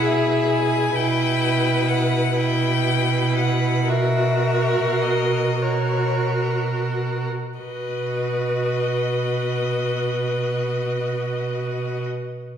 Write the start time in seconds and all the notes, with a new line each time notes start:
Already playing: B2 E4 G#4
0.05 E5
0.50 G#5
0.95 B2 E4 B4 G5
1.88 F#5
2.36 E4 B4 G5
3.37 F#5
3.89 F#4 A#4 E5
5.02 D#5
5.61 F#4 A#4 C#5
7.59 B2 F#4 B4 D#5